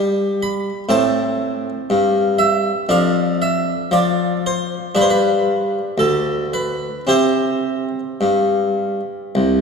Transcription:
Already playing: G3 D4 G5
0.43 B5
0.89 A2 C4 A5
1.90 G2
2.39 E5
2.89 F2 D4 F5
3.42 E5
3.91 F3 D5
4.46 C5
4.95 G2 D4 B4
5.01 C5
5.10 B4
5.98 D2 A4
6.54 B4
7.07 C3 C4 G4 C5
8.21 G2
9.35 C2

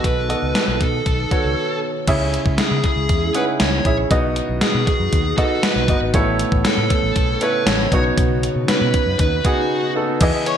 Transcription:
Already playing: B2 D#3 B3 F#4 A4 D#5
0.04 B1 B4, kick, closed hi-hat
0.29 B3 F#4 A4 D#5, closed hi-hat
0.42 C#2
0.55 snare, closed hi-hat
0.68 B1
0.81 B2 A4, kick, closed hi-hat
1.06 B1, kick, closed hi-hat
1.31 B3 F#4 A4 C#5, muted fingered electric bass stroke, kick, closed hi-hat
1.44 C#2
2.07 C#2 C#3 G#3 C#4 E4 G#4 E5, kick, closed hi-hat, crash
2.34 closed hi-hat
2.46 C#2, kick
2.58 G#4, muted fingered electric bass stroke, snare, closed hi-hat
2.71 C#3
2.84 G#4, kick, closed hi-hat
2.96 C#2
3.09 E2, kick, closed hi-hat
3.34 C#4 D#4 G#4 B4 F#5, closed hi-hat
3.41 E4
3.60 C#2 C#5, snare, closed hi-hat
3.85 A#1 C#4 E4 G#4 E5, kick, closed hi-hat
4.10 B1 B2 D#3 B3 D#4 F#4 D#5, kick, closed hi-hat
4.36 closed hi-hat
4.49 B1
4.61 G#4, snare, closed hi-hat
4.74 B2
4.87 G#4, kick, closed hi-hat
5.00 F#2
5.13 D#2, kick, closed hi-hat
5.37 B3 D#4 F#4 A4 D#5, kick, closed hi-hat
5.63 B4, snare, closed hi-hat
5.76 B1
5.88 G1 B3 D#4 F#4 D#5, kick, closed hi-hat
6.01 G#1
6.14 A1 A2 C#3 B3 E4 A4 C#5, kick, closed hi-hat
6.39 closed hi-hat
6.52 A1, kick
6.65 A4, muted fingered electric bass stroke, snare, closed hi-hat
6.77 A2
6.90 A4, kick, closed hi-hat
7.03 A1
7.16 B1, kick, closed hi-hat
7.41 B3 E4 A4 B4 C#5, closed hi-hat
7.66 A1 C#5, snare, closed hi-hat
7.92 B1 B2 B3 D#4 F#4 C#5, kick, closed hi-hat
8.18 B1, kick, closed hi-hat
8.43 closed hi-hat
8.56 B2
8.68 B4, muted fingered electric bass stroke, snare, closed hi-hat
8.81 B2
8.94 kick, closed hi-hat
9.06 F#2
9.19 D#2 B4, kick, closed hi-hat
9.45 B3 D#4 F#4 G#4, kick, closed hi-hat
9.95 B3 D#4 F#4 A4
10.21 E2 E3 G#3 B3 E4 G#4 D#5, kick, closed hi-hat, crash
10.46 C#5 C#6, closed hi-hat

